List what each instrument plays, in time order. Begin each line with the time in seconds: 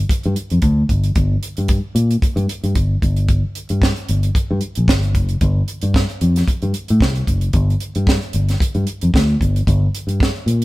0.09 muted fingered electric bass stroke, kick, closed hi-hat
0.23 fingered electric bass G2, closed hi-hat
0.36 closed hi-hat
0.50 fingered electric bass F2, closed hi-hat
0.62 fingered electric bass D2, kick, closed hi-hat
0.89 fingered electric bass G1, kick, closed hi-hat
1.04 closed hi-hat
1.16 fingered electric bass G1, kick, closed hi-hat
1.43 closed hi-hat
1.57 fingered electric bass G2, closed hi-hat
1.68 kick, closed hi-hat
1.95 fingered electric bass A#2, closed hi-hat
2.11 closed hi-hat
2.22 muted fingered electric bass stroke, kick, closed hi-hat
2.36 fingered electric bass G2, closed hi-hat
2.49 closed hi-hat
2.64 fingered electric bass G2, closed hi-hat
2.75 fingered electric bass G1, kick, closed hi-hat
3.02 fingered electric bass G1, kick, closed hi-hat
3.17 closed hi-hat
3.28 kick, closed hi-hat
3.55 closed hi-hat
3.69 fingered electric bass G2, closed hi-hat
3.82 kick, snare
3.96 closed hi-hat
4.09 fingered electric bass G1, closed hi-hat
4.23 closed hi-hat
4.35 muted fingered electric bass stroke, kick, closed hi-hat
4.51 fingered electric bass G2
4.61 closed hi-hat
4.75 fingered electric bass A#1, closed hi-hat
4.88 fingered electric bass G1, kick, snare
5.03 closed hi-hat
5.15 fingered electric bass F#1, kick, closed hi-hat
5.29 closed hi-hat
5.41 fingered electric bass G1, kick, closed hi-hat
5.68 closed hi-hat
5.82 fingered electric bass G2, closed hi-hat
5.94 kick, snare
6.10 closed hi-hat
6.21 fingered electric bass F2, closed hi-hat
6.36 snare, closed hi-hat
6.48 muted fingered electric bass stroke, kick, closed hi-hat
6.62 fingered electric bass G2, closed hi-hat
6.74 closed hi-hat
6.88 fingered electric bass A2, closed hi-hat
7.00 fingered electric bass C2, kick, snare
7.15 closed hi-hat
7.27 fingered electric bass F#1, kick, closed hi-hat
7.41 closed hi-hat
7.53 fingered electric bass G1, kick, closed hi-hat
7.70 closed hi-hat
7.80 closed hi-hat
7.95 fingered electric bass G2, closed hi-hat
8.07 kick, snare
8.22 closed hi-hat
8.33 fingered electric bass G1, closed hi-hat
8.49 snare, closed hi-hat
8.60 muted fingered electric bass stroke, kick, closed hi-hat
8.75 fingered electric bass G2, closed hi-hat
8.87 closed hi-hat
9.01 fingered electric bass F2, closed hi-hat
9.14 fingered electric bass D2, kick, snare
9.41 fingered electric bass G1, kick, closed hi-hat
9.56 closed hi-hat
9.67 fingered electric bass G1, kick, closed hi-hat
9.95 closed hi-hat
10.07 fingered electric bass G2, closed hi-hat
10.20 kick, snare
10.46 fingered electric bass A#2, closed hi-hat